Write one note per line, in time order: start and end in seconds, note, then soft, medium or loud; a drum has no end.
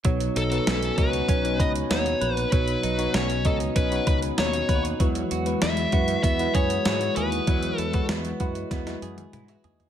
0.04 0.27 B1 medium
0.04 0.94 B2 medium
0.04 2.52 F#3 medium
0.04 0.40 B3 medium
0.04 0.40 D#4 medium
0.04 0.40 F#4 medium
0.04 0.40 C#5 medium
0.04 kick loud
0.04 closed hi-hat medium
0.20 closed hi-hat medium
0.36 0.58 B1 medium
0.36 0.97 D#4 soft
0.36 0.94 A4 medium
0.36 closed hi-hat medium
0.51 0.86 B3 medium
0.51 0.86 D#4 medium
0.51 0.87 F#4 medium
0.51 0.87 B4 medium
0.51 closed hi-hat soft
0.67 0.89 B1 medium
0.67 1.28 C#4 medium
0.67 snare medium
0.67 closed hi-hat medium
0.83 closed hi-hat soft
0.97 1.20 C#2 medium
0.97 1.32 B3 medium
0.97 1.33 D#4 medium
0.97 1.89 D#4 medium
0.97 1.33 F#4 medium
0.97 1.62 B4 medium
0.97 1.33 C#5 medium
0.97 kick medium
0.97 closed hi-hat medium
1.13 closed hi-hat soft
1.28 1.59 B1 loud
1.28 3.13 C#4 medium
1.28 kick medium
1.28 closed hi-hat medium
1.44 1.79 B3 medium
1.44 1.79 D#4 medium
1.44 1.79 F#4 medium
1.44 1.80 C#5 medium
1.44 closed hi-hat soft
1.59 1.82 C#2 medium
1.59 2.21 B4 medium
1.59 1.69 D#5 medium
1.59 kick medium
1.59 closed hi-hat medium
1.76 closed hi-hat medium
1.89 2.13 D#2 medium
1.89 2.37 B3 medium
1.89 2.37 D#4 medium
1.89 2.82 D#4 medium
1.89 2.37 F#4 medium
1.89 2.37 C#5 medium
1.89 2.35 C#5 medium
1.89 snare loud
1.89 closed hi-hat medium
2.06 closed hi-hat medium
2.21 2.43 A#1 medium
2.21 4.06 B4 medium
2.21 closed hi-hat medium
2.35 2.49 B4 medium
2.35 closed hi-hat soft
2.52 2.75 B1 medium
2.52 3.41 B2 medium
2.52 5.00 F#3 medium
2.52 2.87 B3 medium
2.52 2.87 D#4 medium
2.52 2.87 F#4 medium
2.52 3.15 B4 medium
2.52 2.88 C#5 medium
2.52 kick loud
2.52 closed hi-hat medium
2.68 closed hi-hat medium
2.83 3.06 B1 medium
2.83 3.44 D#4 medium
2.83 closed hi-hat medium
2.98 3.33 B3 medium
2.98 3.33 D#4 medium
2.98 3.34 F#4 medium
2.98 3.34 C#5 medium
2.98 closed hi-hat soft
3.14 3.45 B1 medium
3.14 3.75 C#4 medium
3.14 3.44 C#5 medium
3.14 snare medium
3.14 closed hi-hat medium
3.30 closed hi-hat soft
3.45 3.67 C#2 medium
3.45 3.80 B3 medium
3.45 4.37 D#4 medium
3.45 3.80 D#4 medium
3.45 3.80 F#4 medium
3.45 3.55 A4 medium
3.45 3.81 D#5 medium
3.45 kick medium
3.45 closed hi-hat medium
3.60 closed hi-hat soft
3.76 3.98 B1 medium
3.76 5.06 C#4 medium
3.76 4.07 B4 medium
3.76 kick medium
3.76 closed hi-hat medium
3.91 4.26 B3 medium
3.91 4.27 D#4 medium
3.91 4.27 F#4 medium
3.91 4.27 C#5 medium
3.91 closed hi-hat soft
4.07 4.29 C#2 medium
4.07 4.68 B4 medium
4.07 4.16 B4 medium
4.07 kick medium
4.07 closed hi-hat medium
4.22 closed hi-hat medium
4.37 4.60 D#2 medium
4.37 4.84 B3 medium
4.37 4.84 D#4 medium
4.37 5.06 D#4 medium
4.37 4.85 F#4 medium
4.37 4.85 C#5 medium
4.37 4.82 C#5 medium
4.37 snare loud
4.37 closed hi-hat medium
4.54 closed hi-hat soft
4.69 4.91 D#2 medium
4.69 6.55 B4 medium
4.69 kick medium
4.69 closed hi-hat medium
4.85 closed hi-hat soft
5.00 5.22 E2 loud
5.00 5.89 E3 medium
5.00 7.48 F#3 medium
5.00 5.35 G#3 medium
5.00 5.35 E4 medium
5.00 5.35 F#4 medium
5.00 5.35 B4 medium
5.00 kick loud
5.00 closed hi-hat medium
5.15 closed hi-hat medium
5.31 5.53 E2 medium
5.31 5.93 F#4 medium
5.31 closed hi-hat medium
5.45 5.81 G#3 medium
5.45 5.81 E4 medium
5.45 5.81 F#4 medium
5.45 5.81 B4 medium
5.45 closed hi-hat medium
5.62 5.84 E2 medium
5.62 6.24 B3 medium
5.62 6.22 E5 medium
5.62 snare medium
5.62 closed hi-hat medium
5.77 closed hi-hat soft
5.92 6.15 F#2 medium
5.92 6.28 G#3 medium
5.92 6.28 E4 medium
5.92 6.28 F#4 medium
5.92 6.85 F#4 medium
5.92 6.28 B4 medium
5.92 kick medium
5.92 closed hi-hat medium
6.08 closed hi-hat soft
6.23 6.46 E2 medium
6.23 8.09 B3 medium
6.23 6.55 E5 medium
6.23 kick medium
6.23 closed hi-hat medium
6.39 6.74 G#3 medium
6.39 6.74 E4 medium
6.39 6.74 F#4 medium
6.39 6.75 B4 medium
6.39 closed hi-hat soft
6.54 6.77 F#2 medium
6.54 7.17 G#4 medium
6.54 7.16 C#5 medium
6.54 kick medium
6.54 closed hi-hat medium
6.70 closed hi-hat medium
6.85 7.08 G#2 medium
6.85 7.32 G#3 medium
6.85 7.32 E4 medium
6.85 7.78 F#4 medium
6.85 7.33 F#4 medium
6.85 7.33 B4 medium
6.85 snare loud
6.85 closed hi-hat medium
7.01 closed hi-hat soft
7.16 7.39 D#2 medium
7.16 9.02 G#4 medium
7.16 7.79 B4 medium
7.16 closed hi-hat medium
7.32 closed hi-hat soft
7.47 7.70 E2 loud
7.47 8.36 E3 medium
7.47 9.89 F#3 medium
7.47 7.82 G#3 medium
7.47 7.82 E4 medium
7.47 7.83 F#4 medium
7.47 7.83 B4 medium
7.47 kick loud
7.47 closed hi-hat medium
7.63 closed hi-hat medium
7.78 8.00 E2 medium
7.78 7.94 E4 medium
7.78 8.05 A4 medium
7.78 closed hi-hat medium
7.93 8.28 G#3 medium
7.93 8.28 E4 medium
7.93 8.29 F#4 medium
7.93 8.39 F#4 soft
7.93 8.29 B4 medium
7.93 kick medium
7.93 closed hi-hat soft
8.09 8.31 E2 medium
8.09 8.71 B3 medium
8.09 snare loud
8.09 closed hi-hat medium
8.25 closed hi-hat soft
8.40 8.62 F#2 medium
8.40 8.75 G#3 medium
8.40 8.75 E4 medium
8.40 9.33 F#4 medium
8.40 8.75 F#4 medium
8.40 8.75 B4 medium
8.40 kick medium
8.40 closed hi-hat medium
8.55 closed hi-hat soft
8.71 8.93 E2 medium
8.71 9.89 B3 medium
8.71 kick medium
8.71 snare medium
8.71 closed hi-hat medium
8.86 9.21 G#3 medium
8.86 9.02 E4 medium
8.86 9.02 F#4 medium
8.86 9.02 B4 medium
8.86 snare soft
8.86 closed hi-hat soft
9.01 9.24 F#2 medium
9.01 9.64 G#4 medium
9.01 closed hi-hat medium
9.18 closed hi-hat medium
9.18 high tom medium
9.33 9.55 G#2 medium
9.33 9.49 E4 medium
9.33 9.48 B4 soft
9.33 9.48 G#5 medium
9.33 closed hi-hat medium
9.33 mid tom medium
9.48 9.89 F#4 soft
9.48 9.64 G#4 medium
9.48 9.63 E5 medium
9.48 closed hi-hat soft
9.63 9.86 D#2 medium
9.63 9.79 F#4 medium
9.63 9.89 G#4 medium
9.63 9.79 D#5 medium
9.63 closed hi-hat medium
9.63 floor tom medium
9.79 9.89 D#4 soft
9.79 9.89 B4 medium
9.79 closed hi-hat soft
9.79 floor tom medium